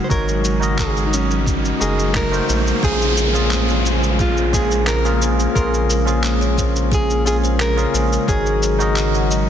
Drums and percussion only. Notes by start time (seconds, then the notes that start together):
0.10 kick, shaker
0.29 shaker
0.45 shaker
0.63 shaker
0.78 kick, clap, shaker
0.97 shaker
1.14 shaker
1.31 shaker
1.47 kick, shaker
1.65 shaker
1.82 shaker
1.99 shaker
2.15 kick, clap, shaker
2.33 shaker
2.49 shaker
2.67 shaker
2.83 kick, shaker
3.02 shaker
3.17 shaker
3.35 shaker
3.51 clap, shaker
3.69 shaker
3.86 shaker
4.03 shaker
4.19 kick, shaker
4.37 shaker
4.53 kick, shaker
4.72 shaker
4.87 clap, shaker
5.06 shaker
5.22 shaker
5.40 shaker
5.55 kick, shaker
5.74 shaker
5.90 shaker
6.08 shaker
6.24 clap, shaker
6.42 shaker
6.58 kick, shaker
6.76 shaker
6.92 kick, shaker
7.10 shaker
7.27 shaker
7.45 shaker
7.60 clap, shaker
7.79 shaker
7.95 shaker
8.13 shaker
8.28 kick, shaker
8.46 shaker
8.63 shaker
8.80 shaker
8.96 clap, shaker
9.15 shaker
9.31 shaker